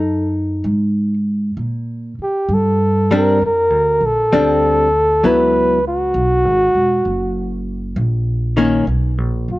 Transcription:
0.00 0.61 F#2 medium
0.00 1.13 D#4 soft
0.00 0.34 A4 medium
0.64 1.53 G#2 medium
1.57 2.14 A#2 medium
2.19 muted upright bass stroke soft
2.23 2.55 G4 medium
2.49 3.38 G2 medium
2.54 3.12 A4 medium
3.11 3.38 G3 medium
3.11 3.38 C4 medium
3.11 3.38 D4 medium
3.16 3.42 A#4 medium
3.41 3.70 F2 medium
3.46 4.07 A#4 medium
3.70 4.00 D2 soft
4.01 4.29 A#1 medium
4.06 5.28 A4 medium
4.33 5.21 D2 medium
4.33 4.87 G3 soft
4.33 4.87 C4 medium
4.33 4.87 D4 medium
5.24 6.12 C#2 medium
5.24 5.78 F#3 soft
5.24 5.78 B3 soft
5.24 5.79 E4 soft
5.24 5.85 B4 medium
5.88 7.64 F#4 medium
6.14 6.45 B1 medium
6.45 6.74 G#1 soft
6.75 7.03 E1 medium
7.05 7.93 F#1 medium
7.96 8.85 A#1 medium
8.57 8.84 D#3 medium
8.57 8.85 A#3 soft
8.57 8.85 C#4 medium
8.87 9.18 B1 medium
9.18 9.48 A#1 soft
9.48 9.59 F#1 medium
9.48 9.59 F#4 medium

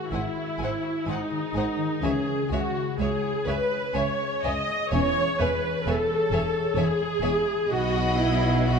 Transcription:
0.00 2.06 G#2 soft
0.00 1.29 D#3 soft
0.00 1.06 G#3 soft
0.00 0.11 F#4 medium
0.00 0.34 F#4 soft
0.11 0.19 G#1 medium
0.11 0.20 G#2 medium
0.11 1.06 E4 medium
0.11 0.58 C5 soft
0.11 0.21 C5 soft
0.11 0.22 F#5 soft
0.11 0.19 G#5 soft
0.35 0.82 F#4 soft
0.59 0.67 G#1 soft
0.59 0.67 G#2 soft
0.59 2.06 C5 soft
0.59 0.67 G#5 soft
0.63 0.71 C5 soft
0.63 0.71 F#5 soft
0.83 2.06 F#4 soft
1.06 1.14 G#1 soft
1.06 1.14 G#2 medium
1.06 1.52 G#3 soft
1.06 2.02 D#4 medium
1.06 1.17 C5 soft
1.06 1.17 F#5 soft
1.06 1.14 G#5 soft
1.31 1.76 D#3 soft
1.53 1.63 G#1 soft
1.53 1.62 G#2 soft
1.53 2.51 G#3 soft
1.53 1.63 C5 soft
1.53 1.64 F#5 soft
1.53 1.62 G#5 soft
1.78 2.06 D#3 soft
2.01 2.11 C#2 medium
2.01 4.96 C#3 medium
2.01 2.39 E3 medium
2.01 2.39 C#4 medium
2.01 2.51 G#4 medium
2.01 2.11 C#5 soft
2.01 2.11 E5 soft
2.01 2.11 G#5 medium
2.27 4.18 C#4 soft
2.49 2.59 C#2 medium
2.49 2.60 C#2 medium
2.49 3.94 G#3 soft
2.49 2.99 F#4 medium
2.49 2.60 C#5 soft
2.49 2.60 E5 soft
2.49 2.57 G#5 soft
2.75 3.22 E4 soft
2.99 3.07 C#2 medium
2.99 3.45 G#4 medium
2.99 3.45 C#5 soft
2.99 3.09 C#5 soft
2.99 3.07 E5 soft
2.99 3.07 G#5 soft
3.23 3.69 E4 soft
3.45 3.54 C#2 soft
3.45 3.55 C#2 soft
3.45 3.95 B4 medium
3.45 5.62 C#5 soft
3.45 3.56 C#5 soft
3.45 3.55 E5 soft
3.45 3.53 G#5 soft
3.71 5.39 E4 soft
3.93 4.02 C#2 medium
3.93 4.04 C#2 medium
3.93 4.43 G#3 soft
3.93 4.44 C#5 medium
3.93 4.03 C#5 soft
3.93 4.03 E5 soft
3.93 4.01 G#5 medium
4.19 4.68 C#4 soft
4.43 4.52 C#2 medium
4.43 4.53 C#2 soft
4.43 5.15 G#3 soft
4.43 4.52 C#5 soft
4.43 4.92 D#5 medium
4.43 4.52 E5 soft
4.43 4.52 G#5 soft
4.69 7.74 C#4 soft
4.90 5.01 E1 medium
4.90 4.99 E2 medium
4.90 5.28 E3 medium
4.90 7.74 E3 medium
4.90 5.29 C#4 medium
4.90 4.98 C#5 medium
4.90 5.39 C#5 medium
4.90 4.99 E5 soft
4.90 5.00 G#5 medium
5.16 6.99 G#3 soft
5.39 5.48 E1 medium
5.39 5.47 E2 soft
5.39 6.76 E4 soft
5.39 5.87 B4 medium
5.39 5.48 C#5 soft
5.39 5.48 E5 soft
5.39 5.49 G#5 soft
5.64 6.09 C#5 soft
5.86 5.94 E1 medium
5.86 5.95 E2 medium
5.86 6.32 G#4 soft
5.86 6.78 A4 medium
5.86 5.95 C#5 soft
5.86 5.95 E5 soft
5.86 5.95 G#5 soft
6.10 6.55 C#5 soft
6.32 6.40 E1 medium
6.32 6.40 E2 medium
6.32 7.75 G#4 medium
6.32 6.41 C#5 soft
6.32 6.40 E5 soft
6.32 6.40 G#5 soft
6.56 7.74 C#5 medium
6.76 6.84 E1 medium
6.76 6.86 E2 medium
6.76 7.23 E4 soft
6.76 7.71 G#4 medium
6.76 6.84 C#5 soft
6.76 6.85 E5 medium
6.76 6.85 G#5 medium
7.01 7.46 G#3 soft
7.22 7.31 E1 medium
7.22 7.30 E2 medium
7.22 7.74 E4 soft
7.22 7.30 C#5 soft
7.22 7.30 E5 soft
7.22 7.34 G#5 soft
7.47 7.74 G#3 soft
7.68 8.79 B1 medium
7.68 8.79 B2 medium
7.68 8.79 F#3 medium
7.68 8.79 D#4 medium
7.68 8.19 F#4 medium
7.68 8.62 D#5 medium
7.68 8.62 F#5 medium
7.68 8.63 B5 medium
7.94 8.79 F#3 soft
8.18 8.79 B3 soft
8.18 8.66 E4 medium
8.43 8.79 F#4 soft
8.66 8.79 F#4 medium
8.66 8.79 D#5 medium
8.66 8.79 F#5 medium
8.66 8.79 B5 medium

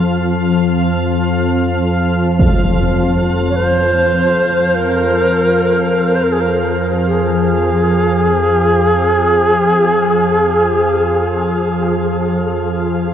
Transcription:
0.00 13.14 F2 medium
0.00 13.14 F3 medium
0.00 13.14 F5 medium
2.39 impact medium
3.49 3.58 C#5 medium
3.56 4.77 C5 loud
4.75 6.17 A#4 loud
6.15 6.25 C5 medium
6.23 6.34 A#4 medium
6.32 6.42 G#4 medium
6.41 6.50 A#4 medium
7.07 12.93 G#4 loud

